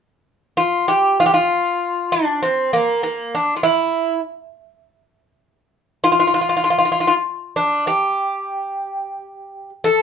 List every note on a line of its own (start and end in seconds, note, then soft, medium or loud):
0.57 0.88 F4 medium
0.88 1.20 G4 medium
1.20 1.26 F4 medium
1.26 1.33 G4 medium
1.34 2.14 F4 medium
2.12 2.42 D4 medium
2.43 2.71 C4 medium
2.73 3.02 A#3 medium
3.03 3.34 A#3 medium
3.35 3.56 D4 medium
3.56 3.63 F4 soft
3.63 4.20 E4 medium
6.04 6.10 F4 medium
6.12 6.18 F4 medium
6.20 6.26 F4 medium
6.27 6.33 F4 medium
6.34 6.40 F4 medium
6.41 6.47 F4 medium
6.49 6.55 F4 medium
6.57 6.63 F4 medium
6.64 6.69 F4 medium
6.70 6.77 F4 medium
6.78 6.84 F4 medium
6.85 6.91 F4 soft
6.92 6.98 F4 medium
7.00 7.06 F4 medium
7.07 7.13 F4 medium
7.56 7.87 D4 medium
7.87 9.69 G4 medium
9.84 10.02 A4 medium